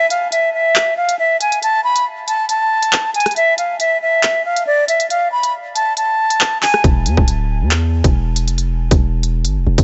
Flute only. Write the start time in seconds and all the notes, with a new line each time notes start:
0.10 F5
0.32 E5
0.54 E5
0.97 F5
1.19 E5
1.41 G#5
1.63 A5
1.84 B5
2.27 A5
2.49 A5
3.15 G#5
3.36 E5
3.58 F5
3.80 E5
4.02 E5
4.45 F5
4.67 D5
4.88 E5
5.10 F5
5.32 B5
5.75 A5
5.97 A5
6.62 G#5